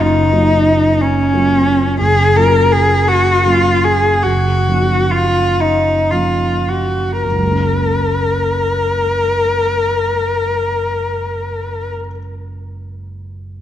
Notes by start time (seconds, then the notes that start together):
Already playing: F#3 A#3 C#4 F4
0.00 F#1 D#4
0.32 F#3 A#3 C#4 F4
1.01 C#4
1.34 F#3 A#3 C#4 F4
2.01 F#1 G#4
2.36 F#3 A#3 C#4 F4 A#4
2.72 G#4
3.08 F#4
3.45 F#3 A#3 C#4 F4
3.84 G#4
4.24 F#1 F#4
4.68 F3 A#3 C#4 D#4
5.11 F4
5.61 D#4
6.11 F3 A#3 C#4 D#4 F4
6.69 F#4
7.22 F#1 A#4
7.30 C#2
7.36 F#3
7.41 G#3
7.47 A#3
7.52 C#4